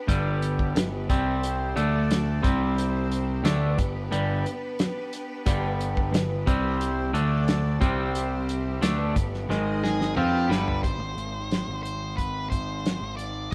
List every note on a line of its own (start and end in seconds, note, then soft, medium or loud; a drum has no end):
0.00 1.06 B3 medium
0.00 1.06 D4 medium
0.00 1.73 G4 medium
0.00 1.06 B4 medium
0.07 0.72 G1 medium
0.07 0.74 G2 medium
0.07 0.74 D3 medium
0.07 0.75 G3 loud
0.07 kick loud
0.07 closed hi-hat medium
0.42 closed hi-hat medium
0.59 kick medium
0.75 1.07 G1 medium
0.75 1.03 G2 medium
0.75 1.03 D3 medium
0.75 snare loud
0.75 closed hi-hat medium
1.09 1.73 C2 medium
1.09 1.76 C3 medium
1.09 1.76 G3 medium
1.09 1.76 G3 loud
1.09 1.76 C4 medium
1.09 1.76 C5 medium
1.09 kick loud
1.09 closed hi-hat medium
1.43 closed hi-hat medium
1.76 2.40 D2 medium
1.76 2.42 D3 medium
1.76 2.43 A3 medium
1.76 2.43 A3 loud
1.76 2.43 D4 medium
1.76 2.43 A4 medium
1.76 2.43 D5 medium
1.76 closed hi-hat medium
2.11 snare loud
2.11 closed hi-hat medium
2.43 3.41 C2 medium
2.43 3.43 C3 loud
2.43 3.43 G3 medium
2.43 3.43 C4 medium
2.43 7.10 G4 medium
2.43 3.43 C5 medium
2.43 kick loud
2.43 closed hi-hat medium
2.78 closed hi-hat medium
3.12 closed hi-hat medium
3.43 3.75 D2 medium
3.43 3.77 D3 loud
3.43 3.78 A3 loud
3.43 6.44 B3 medium
3.43 6.44 D4 medium
3.43 3.78 D4 loud
3.43 6.44 B4 medium
3.43 snare loud
3.43 closed hi-hat medium
3.78 4.10 G1 medium
3.78 4.05 G2 medium
3.78 4.05 D3 medium
3.78 kick medium
3.78 closed hi-hat medium
4.11 4.43 G1 medium
4.11 4.44 G2 medium
4.11 4.45 D3 medium
4.11 4.45 G3 loud
4.11 closed hi-hat medium
4.46 closed hi-hat medium
4.79 snare loud
4.79 closed hi-hat medium
5.13 closed hi-hat medium
5.46 6.10 G1 medium
5.46 6.11 G2 loud
5.46 6.13 D3 loud
5.46 6.13 G3 loud
5.46 kick loud
5.46 closed hi-hat medium
5.81 closed hi-hat medium
5.97 kick medium
6.13 6.44 G1 medium
6.13 6.40 G2 medium
6.13 6.41 D3 medium
6.13 snare loud
6.13 closed hi-hat medium
6.46 7.10 C2 medium
6.46 7.13 C3 medium
6.46 7.14 G3 medium
6.46 7.13 G3 loud
6.46 7.13 C4 medium
6.46 7.14 C5 medium
6.46 kick loud
6.46 closed hi-hat medium
6.81 closed hi-hat medium
7.13 7.77 D2 loud
7.13 7.80 D3 medium
7.13 7.80 A3 medium
7.13 7.81 D4 medium
7.13 7.80 D4 medium
7.13 7.80 A4 medium
7.13 7.80 D5 medium
7.13 closed hi-hat medium
7.48 snare loud
7.48 closed hi-hat medium
7.81 8.78 C2 loud
7.81 8.81 C3 loud
7.81 8.81 G3 loud
7.81 8.81 G3 medium
7.81 8.81 C4 loud
7.81 8.81 C4 medium
7.81 9.48 G4 medium
7.81 8.81 C5 medium
7.81 kick loud
7.81 closed hi-hat medium
8.15 closed hi-hat loud
8.49 closed hi-hat medium
8.81 9.13 D2 medium
8.81 9.14 D3 medium
8.81 9.15 A3 loud
8.81 9.49 B3 medium
8.81 9.15 D4 loud
8.81 9.49 D4 medium
8.81 9.49 B4 medium
8.81 snare loud
8.81 closed hi-hat loud
9.16 9.47 G1 medium
9.16 9.43 G2 medium
9.16 9.43 D3 medium
9.16 kick medium
9.16 closed hi-hat medium
9.34 snare soft
9.49 10.12 G#1 medium
9.49 10.15 G#2 medium
9.49 10.16 D#3 medium
9.49 10.16 G#3 medium
9.49 10.16 D#4 medium
9.49 10.17 G#4 medium
9.49 10.16 D#5 medium
9.49 snare medium
9.84 10.15 G#4 medium
9.84 snare medium
10.01 snare medium
10.16 10.48 F2 medium
10.16 10.49 F3 medium
10.16 10.49 C4 medium
10.16 10.84 D4 medium
10.16 10.50 F4 loud
10.16 10.48 G4 medium
10.16 10.84 G4 medium
10.16 10.84 B4 medium
10.16 10.84 D5 medium
10.16 mid tom medium
10.49 10.81 G1 medium
10.49 10.82 G2 loud
10.49 10.82 D3 loud
10.49 10.83 G3 loud
10.49 10.83 B4 medium
10.49 snare loud
10.68 floor tom medium
10.83 10.99 G#1 medium
10.83 11.80 C5 medium
10.83 kick medium
10.83 closed hi-hat medium
10.99 11.15 G#1 medium
11.16 11.63 G#1 medium
11.16 closed hi-hat medium
11.51 snare loud
11.51 closed hi-hat medium
11.68 12.98 G#1 medium
11.83 12.17 C5 medium
11.83 closed hi-hat medium
12.17 12.49 B4 medium
12.17 kick medium
12.17 closed hi-hat medium
12.50 13.14 C5 medium
12.50 kick medium
12.50 closed hi-hat medium
12.86 snare loud
12.86 closed hi-hat medium
13.01 13.48 G#1 medium
13.17 13.53 D5 medium
13.17 closed hi-hat medium
13.51 13.54 D#5 loud